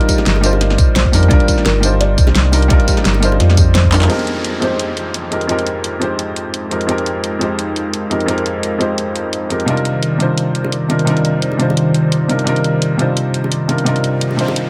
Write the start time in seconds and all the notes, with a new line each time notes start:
Already playing: D#3 G3 D4 D#4 F4 A#4 C5 D5
0.01 closed hi-hat
0.08 G4, kick, closed hi-hat, tambourine
0.18 snare, high bongo
0.26 G1, snare, closed hi-hat
0.36 high bongo
0.41 G3 D4 D#4 F4 A#4, closed hi-hat, tambourine
0.46 C5
0.53 high bongo
0.61 F4, snare, closed hi-hat
0.70 snare
0.78 C2, kick, closed hi-hat, tambourine
0.96 A#1 C5, snare, closed hi-hat
1.05 kick
1.12 F2 G3 D4 D#4 F4 A#4, snare, open hi-hat, tambourine
1.23 closed hi-hat
1.28 C2 D#3 G3 D4 F4 D5, kick, closed hi-hat
1.33 A#4
1.40 closed hi-hat
1.48 kick, closed hi-hat, tambourine
1.58 snare
1.65 G1 A#4, snare, closed hi-hat
1.81 G3 D4 D#4 F4 G4, closed hi-hat, tambourine
1.85 C5
2.01 D5, snare, closed hi-hat
2.18 C2, kick, closed hi-hat, tambourine
2.27 C2, snare, high bongo
2.35 snare, closed hi-hat
2.45 snare
2.52 G3 D4 D#4 F4 A#4, open hi-hat, tambourine, high bongo
2.62 closed hi-hat
2.68 C2 G3 D#4 F4 G4 D5, kick, closed hi-hat
2.73 A#4
2.80 closed hi-hat
2.88 G4, kick, closed hi-hat, tambourine
2.97 snare, closed hi-hat, high bongo
3.05 G1, snare, closed hi-hat, tambourine
3.14 high bongo
3.20 G3 D4 D#4 F4 A#4, closed hi-hat, tambourine
3.25 C5
3.32 high bongo
3.40 F2 F4, snare, closed hi-hat
3.49 snare
3.57 kick, closed hi-hat, tambourine, high bongo
3.75 C5, snare, closed hi-hat
3.84 kick
3.91 G3 D4 D#4 F4 A#4, clap, open hi-hat, tambourine
4.02 clap, closed hi-hat, tambourine
4.07 F2 G#3 C4 D#4 G4 A#4 F5 G5, closed hi-hat, downlifter
4.12 A#4
4.19 closed hi-hat
4.27 closed hi-hat
4.45 closed hi-hat
4.60 F2 G#3 C4 D#4 G4, closed hi-hat
4.64 C5
4.79 closed hi-hat
4.97 closed hi-hat
5.14 closed hi-hat
5.31 F2 G#3 C4 D#4 G4 A#4, closed hi-hat
5.41 closed hi-hat
5.47 F2 G#3 C4 D#4 G4, closed hi-hat
5.52 A#4
5.59 closed hi-hat
5.67 closed hi-hat
5.84 closed hi-hat
5.99 F2 G#3 C4 D#4 G4, closed hi-hat
6.04 C5
6.19 closed hi-hat
6.36 closed hi-hat
6.54 closed hi-hat
6.70 F2 G#3 C4 D#4 G4 A#4, closed hi-hat
6.81 closed hi-hat
6.86 F2 G#3 C4 D#4 G4, closed hi-hat
6.91 A#4
6.98 closed hi-hat
7.06 closed hi-hat
7.24 closed hi-hat
7.39 F2 G#3 C4 D#4 G4, closed hi-hat
7.43 C5
7.59 closed hi-hat
7.76 closed hi-hat
7.94 closed hi-hat
8.10 F2 G#3 C4 D#4 G4 A#4, closed hi-hat
8.20 closed hi-hat
8.26 F2 G#3 C4 D#4 G4, closed hi-hat
8.31 A#4
8.38 closed hi-hat
8.46 closed hi-hat
8.63 closed hi-hat
8.78 F2 G#3 C4 D#4 G4, closed hi-hat
8.83 C5
8.98 closed hi-hat
9.16 closed hi-hat
9.33 closed hi-hat
9.49 F2 G#3 C4 D#4 G4 A#4, closed hi-hat
9.60 closed hi-hat
9.65 C3 D#3 G3 D4 D#4 F4 C5 D5, closed hi-hat
9.70 A#4
9.77 closed hi-hat
9.85 closed hi-hat
10.03 closed hi-hat
10.18 C3 G3 D4 D#4 F4, closed hi-hat
10.22 C5
10.38 closed hi-hat
10.55 closed hi-hat
10.64 high bongo
10.72 closed hi-hat
10.88 C3 G3 D4 D#4 F4 A#4, closed hi-hat, high bongo
10.99 closed hi-hat
11.05 C3 G3 D4 D#4 F4, closed hi-hat
11.10 A#4
11.17 closed hi-hat
11.25 closed hi-hat
11.42 closed hi-hat
11.52 high bongo
11.57 C3 G3 D4 D#4 F4, closed hi-hat
11.62 C5
11.70 high bongo
11.77 closed hi-hat
11.94 closed hi-hat
12.12 closed hi-hat
12.28 C3 G3 D4 D#4 F4 A#4, closed hi-hat
12.39 closed hi-hat
12.44 C3 G3 D4 D#4 F4, closed hi-hat
12.49 A#4
12.56 closed hi-hat
12.64 closed hi-hat
12.82 closed hi-hat
12.97 C3 G3 D4 D#4 F4, closed hi-hat
13.01 C5
13.17 closed hi-hat
13.34 closed hi-hat
13.44 high bongo
13.52 closed hi-hat
13.68 C3 G3 D4 D#4 F4 A#4, closed hi-hat, high bongo
13.78 closed hi-hat
13.84 C3 G3 D4 D#4 F4, closed hi-hat, noise sweep
13.88 A#4
13.96 closed hi-hat
14.04 closed hi-hat
14.21 closed hi-hat
14.31 high bongo
14.36 C3 G3 D4 D#4 F4, closed hi-hat
14.41 C5
14.48 high bongo
14.56 closed hi-hat